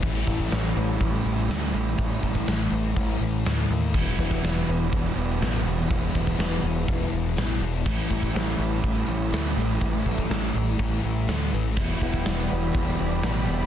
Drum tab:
CC |x---------------|----------------|x---------------|----------------|
HH |--o-o-o-o-o-o-o-|o-o-o-o-o-o-o-o-|--o-o-o-o-o-o-o-|o-o-o-o-o-o-o-o-|
SD |----o-------o---|----o-------o---|----o-------o---|----o-------o---|
BD |o-oo----o-------|o-oo----o-------|o-oo----o-------|o-oo----o-------|

CC |x---------------|----------------|x---------------|
HH |--o-o-o-o-o-o-o-|o-o-o-o-o-o-o-o-|--o-o-o-o-o-o-o-|
SD |----o-------o-o-|----o-------o-o-|----o-------o-o-|
BD |o-oo----o-------|o-oo----o-------|o-oo----o-------|